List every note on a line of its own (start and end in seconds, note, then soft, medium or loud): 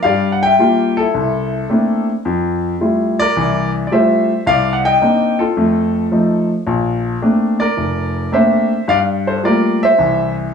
0.03 0.52 G2 medium
0.03 0.52 G3 medium
0.03 0.31 D5 medium
0.03 0.29 F5 loud
0.32 0.42 F#5 medium
0.43 0.95 E5 medium
0.43 0.99 G5 loud
0.59 0.99 G3 medium
0.59 0.99 A#3 medium
0.59 0.99 F4 medium
0.97 1.69 E4 medium
0.97 2.03 A4 medium
1.14 1.62 C2 medium
1.69 2.09 A3 medium
1.69 2.09 A#3 soft
1.69 2.09 C4 soft
1.69 2.09 D4 medium
1.69 2.10 E4 medium
2.25 2.73 F2 medium
2.81 3.20 G3 soft
2.81 3.20 A3 soft
2.81 3.20 E4 medium
2.81 3.20 F4 medium
3.19 3.71 A#4 medium
3.19 3.70 D5 loud
3.36 3.84 C2 medium
3.36 3.84 E3 medium
3.87 3.91 D5 medium
3.92 4.31 G3 medium
3.92 4.31 A3 medium
3.92 4.31 E4 soft
3.92 4.31 F4 medium
3.92 4.44 C5 medium
3.92 4.43 E5 medium
4.47 4.94 C2 medium
4.47 4.74 D5 medium
4.47 4.75 F5 loud
4.73 4.83 F#5 medium
4.85 5.36 D#5 medium
4.85 5.41 G5 loud
5.02 5.41 A#3 medium
5.02 5.41 C4 medium
5.02 5.41 D4 soft
5.02 5.41 D#4 medium
5.39 6.46 F4 medium
5.39 6.45 A4 medium
5.57 6.05 F2 medium
5.57 6.05 A3 medium
6.12 6.51 F3 medium
6.12 6.51 A3 medium
6.12 6.52 D#4 medium
6.67 7.15 A#1 medium
7.22 7.61 A3 medium
7.22 7.62 A#3 soft
7.22 7.62 C4 soft
7.22 7.62 D4 medium
7.60 8.29 A#4 medium
7.60 8.35 D5 loud
7.77 8.25 F1 medium
8.32 8.72 A3 medium
8.32 8.72 A#3 medium
8.32 8.72 C4 medium
8.32 8.72 D4 medium
8.32 8.85 C5 medium
8.32 8.90 E5 medium
8.88 9.36 G2 medium
8.88 8.98 D5 medium
8.88 8.97 F5 loud
9.27 9.43 A4 medium
9.27 9.44 C5 medium
9.43 9.83 G3 medium
9.43 9.83 A3 soft
9.43 9.83 A#3 soft
9.43 9.83 F4 medium
9.43 9.80 A#4 medium
9.43 9.83 D5 medium
9.83 10.34 C5 medium
9.83 10.33 E5 loud
9.98 10.46 C2 medium
9.98 10.46 E3 medium